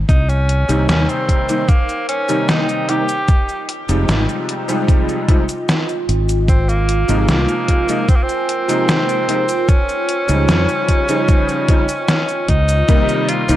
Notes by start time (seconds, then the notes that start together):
0.08 C2 D#4 A#4 C5 G5, kick, closed hi-hat, cabasa
0.29 C#4, closed hi-hat, cabasa
0.49 closed hi-hat
0.68 C2 C3 D#3 G3 A#3 D#4, closed hi-hat, cabasa
0.89 D#2 C#4, snare, closed hi-hat, cabasa
1.09 C4, closed hi-hat, cabasa
1.29 kick, closed hi-hat
1.49 C3 D#3 G3 A#3 D#4, closed hi-hat, cabasa
1.69 A#3, kick, closed hi-hat, cabasa
1.89 closed hi-hat, cabasa
2.09 C#4, closed hi-hat
2.28 C3 D#3 G3 A#3 D#4, closed hi-hat, cabasa
2.49 D#4, snare, closed hi-hat, cabasa
2.69 closed hi-hat, cabasa
2.89 C3 D#3 G3 A#3 D#4 G4, closed hi-hat
3.09 closed hi-hat, cabasa
3.28 F4 D#5, kick, closed hi-hat, cabasa
3.49 closed hi-hat, cabasa
3.69 closed hi-hat
3.89 F1 C3 F3 G3 G#3 D#4, closed hi-hat, cabasa
4.09 G#1, snare, closed hi-hat, cabasa
4.29 closed hi-hat, cabasa
4.49 closed hi-hat
4.68 C3 F3 G3 G#3 D#4, closed hi-hat, cabasa
4.88 kick, closed hi-hat, cabasa
5.09 closed hi-hat, cabasa
5.28 C3 F3 G3 G#3 D#4, kick, closed hi-hat
5.49 closed hi-hat, cabasa
5.69 snare, closed hi-hat, cabasa
5.89 closed hi-hat, cabasa
6.09 G#1, closed hi-hat
6.29 closed hi-hat, cabasa
6.48 C4 A#4 C5 G#5, kick, closed hi-hat, cabasa
6.69 A#3, closed hi-hat, cabasa
6.89 closed hi-hat
7.08 G#1 C3 F3 G#3 A#3 D#4, closed hi-hat, cabasa
7.29 C2 A#3, snare, closed hi-hat, cabasa
7.49 closed hi-hat, cabasa
7.68 kick, closed hi-hat
7.88 C3 F3 G#3 A#3 D#4, closed hi-hat, cabasa
8.09 C4, kick, closed hi-hat, cabasa
8.16 A#3
8.23 C4
8.29 closed hi-hat, cabasa
8.49 closed hi-hat
8.68 C3 F3 G#3 A#3 D#4, closed hi-hat, cabasa
8.89 snare, closed hi-hat, cabasa
9.09 closed hi-hat, cabasa
9.28 C3 F3 G#3 A#3 D#4, closed hi-hat
9.49 closed hi-hat, cabasa
9.69 C#4 D#5 G5, kick, closed hi-hat, cabasa
9.89 closed hi-hat, cabasa
10.09 closed hi-hat
10.28 C#2 C#3 F3 G3 D#4 C5, closed hi-hat, cabasa
10.49 F2, snare, closed hi-hat, cabasa
10.69 closed hi-hat, cabasa
10.88 kick, closed hi-hat
11.08 C#3 F3 G3 D#4 C5, closed hi-hat, cabasa
11.29 kick, closed hi-hat, cabasa
11.49 closed hi-hat, cabasa
11.68 C#3 F3 G3 C4 D#4, kick, closed hi-hat
11.89 closed hi-hat, cabasa
12.09 C#4, snare, closed hi-hat, cabasa
12.29 closed hi-hat, cabasa
12.49 C#2 D#4, kick, closed hi-hat
12.69 closed hi-hat, cabasa
12.88 C3 D#3 G3 A#3 D#4 A#4 C5 G5, kick, closed hi-hat, cabasa
13.09 closed hi-hat, cabasa
13.29 F4, closed hi-hat
13.48 C2 C3 D#3 G3 A#3 D#4, closed hi-hat, cabasa